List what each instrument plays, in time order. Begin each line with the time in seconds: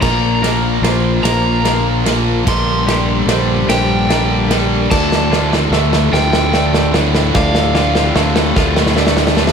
Already playing: string section D3 F4, clean electric guitar D5
0.01 fingered electric bass A#1, distorted electric guitar A#2 F3 A#3, clean electric guitar A#2 A#4, string section F3 A#3 A#4, overdriven electric guitar A#5, kick, snare, crash
0.42 distorted electric guitar A#2 F3 A#3, clean electric guitar A#4, snare, ride
0.82 fingered electric bass A#1, distorted electric guitar A#2 F3 A#3, clean electric guitar F4 C5, snare, ride
1.23 fingered electric bass A#1, distorted electric guitar A#2 F3 A#3, clean electric guitar A#4, overdriven electric guitar A#5, snare, ride
1.64 distorted electric guitar A#2 F3 A#3, clean electric guitar F4 A#4, snare, ride
2.05 distorted electric guitar A#2 F3 A#3, clean electric guitar A#3, snare, ride
2.45 fingered electric bass A#1, distorted electric guitar G2 D3 G3, clean electric guitar G2 A#4, string section G3 G4, overdriven electric guitar C6, kick, snare, ride
2.85 distorted electric guitar G2 D3 G3, clean electric guitar G4, snare, ride
3.26 fingered electric bass A#1, distorted electric guitar G2 D3 G3, clean electric guitar D4 C5, snare, ride
3.68 fingered electric bass A#1, distorted electric guitar G2 D3 G3, clean electric guitar G4, overdriven electric guitar G5, snare, ride
4.09 distorted electric guitar G2 D3 G3, clean electric guitar D4 A#4, snare, ride
4.50 distorted electric guitar G2 D3 G3, clean electric guitar G3, snare, ride
4.90 distorted electric guitar D2 A2 D3, clean electric guitar D2 D5, fingered electric bass D2, string section D3 F3 A3 F4 A4, overdriven electric guitar A5, kick, snare, crash
5.12 snare
5.31 distorted electric guitar D2 A2 D3, clean electric guitar F4, snare
5.53 snare
5.71 fingered electric bass D2, distorted electric guitar D2 A2 D3, clean electric guitar A3 E5, snare
5.93 snare
6.12 distorted electric guitar D2 A2 D3, fingered electric bass D2, clean electric guitar F4, overdriven electric guitar G5, snare
6.33 snare
6.53 distorted electric guitar D2 A2 D3, clean electric guitar A3 D5, snare
6.74 snare
6.93 distorted electric guitar D2 A2 D3, clean electric guitar A2, snare
7.15 snare
7.33 distorted electric guitar D2 A2 D3, clean electric guitar D2 D5, fingered electric bass D2, string section G4, overdriven electric guitar F5, kick, snare
7.55 snare
7.75 distorted electric guitar D2 A2 D3, clean electric guitar F4, snare
7.95 snare
8.15 fingered electric bass D2, distorted electric guitar D2 A2 D3, clean electric guitar A3 F5, snare
8.36 snare
8.56 distorted electric guitar D2 A2 D3, fingered electric bass D2, clean electric guitar F4, kick, snare
8.77 snare
8.86 snare
8.96 distorted electric guitar D2 A2 D3, clean electric guitar A3 D5, snare
9.07 snare
9.17 snare
9.27 snare
9.37 distorted electric guitar D2 A2 D3, clean electric guitar A2, snare
9.47 snare